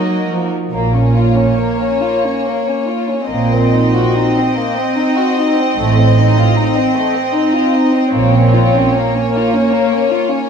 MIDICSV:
0, 0, Header, 1, 6, 480
1, 0, Start_track
1, 0, Key_signature, -5, "minor"
1, 0, Tempo, 855920
1, 417, Time_signature, 3, 2, 24, 8
1, 2326, Tempo, 816327
1, 3286, Tempo, 788436
1, 6156, End_track
2, 0, Start_track
2, 0, Title_t, "Violin section"
2, 0, Program_c, 0, 48
2, 0, Note_on_c, 0, 75, 50
2, 147, Note_off_c, 0, 75, 0
2, 412, Note_on_c, 0, 73, 45
2, 1824, Note_off_c, 0, 73, 0
2, 1854, Note_on_c, 0, 75, 45
2, 4719, Note_on_c, 0, 73, 55
2, 4723, Note_off_c, 0, 75, 0
2, 6156, Note_off_c, 0, 73, 0
2, 6156, End_track
3, 0, Start_track
3, 0, Title_t, "Violin section"
3, 0, Program_c, 1, 48
3, 0, Note_on_c, 1, 66, 45
3, 0, Note_on_c, 1, 70, 42
3, 271, Note_off_c, 1, 70, 0
3, 293, Note_off_c, 1, 66, 0
3, 413, Note_on_c, 1, 58, 46
3, 526, Note_off_c, 1, 58, 0
3, 533, Note_on_c, 1, 61, 40
3, 653, Note_off_c, 1, 61, 0
3, 654, Note_on_c, 1, 65, 38
3, 765, Note_on_c, 1, 61, 37
3, 772, Note_off_c, 1, 65, 0
3, 886, Note_off_c, 1, 61, 0
3, 886, Note_on_c, 1, 58, 38
3, 1004, Note_on_c, 1, 61, 38
3, 1006, Note_off_c, 1, 58, 0
3, 1127, Note_off_c, 1, 61, 0
3, 1132, Note_on_c, 1, 65, 38
3, 1252, Note_off_c, 1, 65, 0
3, 1256, Note_on_c, 1, 61, 39
3, 1374, Note_off_c, 1, 61, 0
3, 1381, Note_on_c, 1, 58, 44
3, 1496, Note_off_c, 1, 58, 0
3, 1503, Note_on_c, 1, 61, 39
3, 1615, Note_on_c, 1, 65, 36
3, 1616, Note_off_c, 1, 61, 0
3, 1731, Note_off_c, 1, 65, 0
3, 1738, Note_on_c, 1, 61, 38
3, 1850, Note_on_c, 1, 58, 44
3, 1853, Note_off_c, 1, 61, 0
3, 1961, Note_off_c, 1, 58, 0
3, 1977, Note_on_c, 1, 60, 43
3, 2093, Note_off_c, 1, 60, 0
3, 2097, Note_on_c, 1, 63, 42
3, 2211, Note_off_c, 1, 63, 0
3, 2214, Note_on_c, 1, 66, 43
3, 2327, Note_off_c, 1, 66, 0
3, 2334, Note_on_c, 1, 63, 42
3, 2450, Note_off_c, 1, 63, 0
3, 2457, Note_on_c, 1, 60, 40
3, 2571, Note_off_c, 1, 60, 0
3, 2575, Note_on_c, 1, 58, 40
3, 2689, Note_off_c, 1, 58, 0
3, 2694, Note_on_c, 1, 60, 45
3, 2808, Note_off_c, 1, 60, 0
3, 2814, Note_on_c, 1, 63, 49
3, 2928, Note_on_c, 1, 66, 44
3, 2929, Note_off_c, 1, 63, 0
3, 3046, Note_off_c, 1, 66, 0
3, 3051, Note_on_c, 1, 63, 42
3, 3167, Note_off_c, 1, 63, 0
3, 3174, Note_on_c, 1, 60, 43
3, 3288, Note_off_c, 1, 60, 0
3, 3299, Note_on_c, 1, 57, 52
3, 3405, Note_off_c, 1, 57, 0
3, 3407, Note_on_c, 1, 60, 46
3, 3527, Note_off_c, 1, 60, 0
3, 3533, Note_on_c, 1, 63, 47
3, 3646, Note_on_c, 1, 65, 53
3, 3648, Note_off_c, 1, 63, 0
3, 3763, Note_off_c, 1, 65, 0
3, 3766, Note_on_c, 1, 63, 47
3, 3882, Note_off_c, 1, 63, 0
3, 3889, Note_on_c, 1, 60, 46
3, 4001, Note_on_c, 1, 57, 48
3, 4002, Note_off_c, 1, 60, 0
3, 4118, Note_off_c, 1, 57, 0
3, 4121, Note_on_c, 1, 60, 49
3, 4238, Note_off_c, 1, 60, 0
3, 4240, Note_on_c, 1, 63, 54
3, 4358, Note_off_c, 1, 63, 0
3, 4360, Note_on_c, 1, 65, 49
3, 4478, Note_off_c, 1, 65, 0
3, 4481, Note_on_c, 1, 63, 43
3, 4600, Note_off_c, 1, 63, 0
3, 4606, Note_on_c, 1, 60, 47
3, 4724, Note_off_c, 1, 60, 0
3, 4729, Note_on_c, 1, 58, 55
3, 4840, Note_off_c, 1, 58, 0
3, 4847, Note_on_c, 1, 61, 53
3, 4970, Note_off_c, 1, 61, 0
3, 4976, Note_on_c, 1, 65, 48
3, 5096, Note_off_c, 1, 65, 0
3, 5098, Note_on_c, 1, 61, 54
3, 5218, Note_off_c, 1, 61, 0
3, 5226, Note_on_c, 1, 58, 49
3, 5340, Note_on_c, 1, 61, 48
3, 5341, Note_off_c, 1, 58, 0
3, 5457, Note_off_c, 1, 61, 0
3, 5463, Note_on_c, 1, 65, 52
3, 5577, Note_on_c, 1, 61, 52
3, 5578, Note_off_c, 1, 65, 0
3, 5688, Note_on_c, 1, 58, 56
3, 5694, Note_off_c, 1, 61, 0
3, 5809, Note_off_c, 1, 58, 0
3, 5816, Note_on_c, 1, 61, 55
3, 5928, Note_on_c, 1, 65, 49
3, 5931, Note_off_c, 1, 61, 0
3, 6039, Note_on_c, 1, 61, 48
3, 6046, Note_off_c, 1, 65, 0
3, 6156, Note_off_c, 1, 61, 0
3, 6156, End_track
4, 0, Start_track
4, 0, Title_t, "Viola section"
4, 0, Program_c, 2, 48
4, 0, Note_on_c, 2, 58, 37
4, 0, Note_on_c, 2, 63, 39
4, 268, Note_off_c, 2, 58, 0
4, 290, Note_off_c, 2, 63, 0
4, 415, Note_on_c, 2, 58, 44
4, 1825, Note_off_c, 2, 58, 0
4, 1852, Note_on_c, 2, 60, 45
4, 5192, Note_off_c, 2, 60, 0
4, 5214, Note_on_c, 2, 58, 64
4, 6156, Note_off_c, 2, 58, 0
4, 6156, End_track
5, 0, Start_track
5, 0, Title_t, "Cello section"
5, 0, Program_c, 3, 48
5, 0, Note_on_c, 3, 54, 38
5, 164, Note_off_c, 3, 54, 0
5, 169, Note_on_c, 3, 53, 35
5, 411, Note_off_c, 3, 53, 0
5, 413, Note_on_c, 3, 46, 45
5, 809, Note_off_c, 3, 46, 0
5, 1849, Note_on_c, 3, 46, 51
5, 2246, Note_off_c, 3, 46, 0
5, 3281, Note_on_c, 3, 45, 56
5, 3682, Note_off_c, 3, 45, 0
5, 4721, Note_on_c, 3, 46, 62
5, 5134, Note_off_c, 3, 46, 0
5, 6156, End_track
6, 0, Start_track
6, 0, Title_t, "Double bass section"
6, 0, Program_c, 4, 48
6, 413, Note_on_c, 4, 34, 48
6, 809, Note_off_c, 4, 34, 0
6, 1848, Note_on_c, 4, 34, 53
6, 2246, Note_off_c, 4, 34, 0
6, 3283, Note_on_c, 4, 33, 60
6, 3683, Note_off_c, 4, 33, 0
6, 4720, Note_on_c, 4, 34, 61
6, 5133, Note_off_c, 4, 34, 0
6, 6156, End_track
0, 0, End_of_file